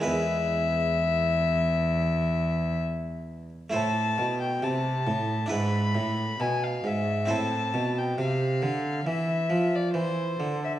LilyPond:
<<
  \new Staff \with { instrumentName = "Violin" } { \time 4/4 \key a \minor \tempo 4 = 67 e''2. r4 | a''8. g''16 a''4 b''4 gis''16 f''16 e''8 | a''8. g''16 f''4 e''8. d''16 c''8. e''16 | }
  \new Staff \with { instrumentName = "Harpsichord" } { \time 4/4 \key a \minor <gis e' b'>1 | <a e' c''>2 <d' e' b'>2 | <c' e' c''>1 | }
  \new Staff \with { instrumentName = "Harpsichord" } { \clef bass \time 4/4 \key a \minor e,1 | a,8 b,8 c8 a,8 gis,8 a,8 b,8 gis,8 | a,8 b,8 c8 d8 e8 f8 e8 d8 | }
  \new Staff \with { instrumentName = "Cello" } { \clef bass \time 4/4 \key a \minor e,1 | a,8 b,8 c8 a,8 gis,8 a,8 b,8 gis,8 | a,8 b,8 c8 d8 e8 f8 e8 d8 | }
>>